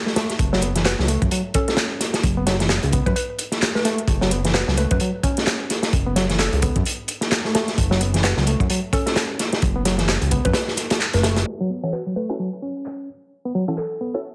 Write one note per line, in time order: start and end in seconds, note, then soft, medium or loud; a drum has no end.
0.06 0.15 A3 medium
0.06 snare soft
0.16 0.29 A3 medium
0.16 snare loud
0.16 closed hi-hat medium
0.30 snare soft
0.30 closed hi-hat soft
0.39 0.95 F#1 loud
0.39 kick loud
0.39 closed hi-hat soft
0.39 closed hi-hat medium
0.53 0.62 F#3 loud
0.53 snare medium
0.62 0.72 B3 medium
0.62 closed hi-hat medium
0.76 0.84 E3 medium
0.76 snare soft
0.76 closed hi-hat soft
0.85 0.95 F#4 medium
0.85 1.01 B4 medium
0.85 snare loud
0.85 clap loud
0.85 closed hi-hat soft
0.85 closed hi-hat loud
0.99 1.17 C#2 loud
0.99 1.06 F#3 medium
0.99 snare medium
1.08 1.21 A3 medium
1.08 closed hi-hat medium
1.22 1.30 F#2 medium
1.22 kick medium
1.22 closed hi-hat soft
1.31 1.41 F#3 medium
1.31 closed hi-hat loud
1.31 closed hi-hat soft
1.54 2.00 C#4 medium
1.54 1.63 A4 medium
1.54 kick loud
1.54 closed hi-hat medium
1.68 1.74 A4 medium
1.68 snare soft
1.68 closed hi-hat soft
1.77 snare loud
1.77 clap loud
1.77 closed hi-hat medium
1.77 closed hi-hat soft
2.00 snare soft
2.00 closed hi-hat medium
2.14 snare soft
2.14 closed hi-hat soft
2.23 2.79 F#1 medium
2.23 kick medium
2.23 closed hi-hat medium
2.23 closed hi-hat soft
2.37 2.44 B3 medium
2.47 2.56 F#3 loud
2.47 snare medium
2.47 closed hi-hat medium
2.60 2.70 E3 medium
2.60 snare soft
2.60 closed hi-hat soft
2.69 snare loud
2.69 clap loud
2.69 closed hi-hat soft
2.69 closed hi-hat medium
2.83 3.02 C#2 loud
2.83 closed hi-hat soft
2.92 3.06 B3 medium
2.92 kick loud
2.92 closed hi-hat medium
3.06 3.14 F#2 medium
3.06 3.13 B4 medium
3.06 kick loud
3.06 closed hi-hat soft
3.16 3.24 B4 medium
3.16 closed hi-hat soft
3.16 closed hi-hat medium
3.39 closed hi-hat medium
3.52 snare soft
3.52 closed hi-hat soft
3.62 snare loud
3.62 clap loud
3.62 closed hi-hat soft
3.62 closed hi-hat medium
3.75 3.84 A3 medium
3.75 4.39 B4 medium
3.75 snare soft
3.85 3.98 A3 medium
3.85 snare soft
3.85 closed hi-hat medium
3.98 closed hi-hat soft
4.08 4.64 F#1 medium
4.08 kick loud
4.08 closed hi-hat medium
4.08 closed hi-hat soft
4.21 4.31 F#3 loud
4.21 snare soft
4.31 4.41 B3 medium
4.31 closed hi-hat medium
4.45 4.54 E3 medium
4.45 snare soft
4.45 closed hi-hat soft
4.54 4.64 F#4 medium
4.54 4.70 B4 medium
4.54 snare loud
4.54 clap loud
4.54 closed hi-hat soft
4.54 closed hi-hat medium
4.68 4.86 C#2 loud
4.68 4.75 F#3 medium
4.68 snare medium
4.77 4.90 A3 medium
4.77 4.86 B4 medium
4.77 closed hi-hat medium
4.91 4.99 F#2 medium
4.91 4.97 B4 medium
4.91 kick medium
4.91 closed hi-hat soft
5.00 5.10 F#3 medium
5.00 closed hi-hat medium
5.00 closed hi-hat soft
5.23 5.69 C#4 medium
5.23 kick medium
5.23 closed hi-hat medium
5.37 snare soft
5.37 closed hi-hat soft
5.47 snare loud
5.47 clap loud
5.47 closed hi-hat soft
5.47 closed hi-hat medium
5.70 snare soft
5.70 closed hi-hat medium
5.83 snare medium
5.83 closed hi-hat soft
5.93 6.49 F#1 loud
5.93 kick medium
5.93 closed hi-hat medium
5.93 closed hi-hat soft
6.07 6.13 B3 medium
6.16 6.26 F#3 loud
6.16 snare soft
6.16 closed hi-hat medium
6.29 6.39 E3 medium
6.29 snare soft
6.29 closed hi-hat soft
6.39 6.75 A4 medium
6.39 snare loud
6.39 clap loud
6.39 closed hi-hat loud
6.39 closed hi-hat soft
6.53 6.71 C#2 loud
6.53 closed hi-hat soft
6.62 6.75 B3 medium
6.62 kick medium
6.62 closed hi-hat medium
6.76 6.84 F#2 medium
6.76 kick loud
6.76 closed hi-hat soft
6.85 closed hi-hat soft
6.85 closed hi-hat loud
7.08 closed hi-hat medium
7.21 snare soft
7.21 closed hi-hat soft
7.31 snare loud
7.31 clap loud
7.31 closed hi-hat medium
7.31 closed hi-hat soft
7.44 7.54 A3 medium
7.44 snare soft
7.55 7.67 A3 medium
7.55 snare loud
7.55 closed hi-hat medium
7.68 snare soft
7.68 closed hi-hat soft
7.78 8.34 F#1 medium
7.78 kick loud
7.78 closed hi-hat medium
7.78 closed hi-hat soft
7.91 8.00 F#3 loud
7.91 snare medium
8.01 8.10 B3 medium
8.01 closed hi-hat medium
8.14 8.23 E3 medium
8.14 snare soft
8.14 closed hi-hat soft
8.24 8.33 F#4 medium
8.24 8.40 B4 medium
8.24 snare loud
8.24 clap loud
8.24 closed hi-hat loud
8.24 closed hi-hat soft
8.37 8.56 C#2 loud
8.37 8.44 F#3 medium
8.37 snare medium
8.47 8.60 A3 medium
8.47 closed hi-hat medium
8.60 8.68 F#2 medium
8.60 kick loud
8.60 closed hi-hat soft
8.70 8.80 F#3 medium
8.70 closed hi-hat loud
8.70 closed hi-hat soft
8.93 9.38 C#4 medium
8.93 9.02 A4 medium
8.93 kick medium
8.93 closed hi-hat medium
9.06 9.13 A4 medium
9.06 snare soft
9.06 closed hi-hat soft
9.16 snare loud
9.16 clap medium
9.16 closed hi-hat medium
9.16 closed hi-hat soft
9.39 snare soft
9.39 closed hi-hat medium
9.53 snare medium
9.53 closed hi-hat soft
9.62 10.18 F#1 medium
9.62 kick loud
9.62 closed hi-hat medium
9.62 closed hi-hat soft
9.76 9.83 B3 medium
9.85 9.95 F#3 loud
9.85 snare medium
9.85 closed hi-hat medium
9.98 10.08 E3 medium
9.98 snare soft
9.98 closed hi-hat soft
10.09 snare loud
10.09 clap loud
10.09 closed hi-hat medium
10.09 closed hi-hat soft
10.22 10.40 C#2 loud
10.22 closed hi-hat soft
10.31 10.44 B3 medium
10.31 kick medium
10.31 closed hi-hat medium
10.45 10.53 F#2 medium
10.45 10.51 B4 medium
10.45 kick loud
10.45 closed hi-hat soft
10.53 10.63 B4 medium
10.53 snare loud
10.53 closed hi-hat medium
10.53 closed hi-hat soft
10.68 snare soft
10.77 snare soft
10.77 closed hi-hat medium
10.90 snare medium
10.90 closed hi-hat medium
10.90 closed hi-hat soft
11.00 snare soft
11.00 clap medium
11.00 closed hi-hat soft
11.13 11.44 F#1 medium
11.13 11.23 A3 medium
11.13 11.47 B4 medium
11.13 snare soft
11.13 closed hi-hat medium
11.23 11.37 A3 medium
11.23 snare loud
11.23 closed hi-hat medium
11.36 snare loud
11.36 closed hi-hat medium
11.36 closed hi-hat soft
11.60 11.70 F#3 medium
11.70 11.79 B3 medium
11.83 11.92 E3 medium
11.83 11.92 C#4 medium
11.83 11.92 E4 medium
11.83 11.91 F#4 medium
11.83 11.92 A4 loud
11.93 12.03 F#4 medium
11.93 12.09 B4 medium
11.93 clap medium
12.06 12.13 F#3 medium
12.16 12.29 A3 medium
12.16 12.25 B4 medium
12.29 12.38 C#4 medium
12.29 12.38 E4 medium
12.29 12.38 F#4 medium
12.29 12.38 A4 loud
12.29 12.36 B4 medium
12.39 12.49 F#3 medium
12.62 13.07 C#4 medium
12.86 clap medium
13.45 13.52 B3 medium
13.55 13.64 F#3 medium
13.68 13.77 E3 medium
13.68 13.76 C#4 medium
13.68 13.76 E4 medium
13.68 13.76 F#4 medium
13.68 13.76 A4 medium
13.78 14.14 A4 medium
13.78 clap loud
14.01 14.13 B3 medium
14.14 14.22 C#4 medium
14.14 14.22 E4 medium
14.14 14.22 F#4 medium
14.14 14.22 A4 loud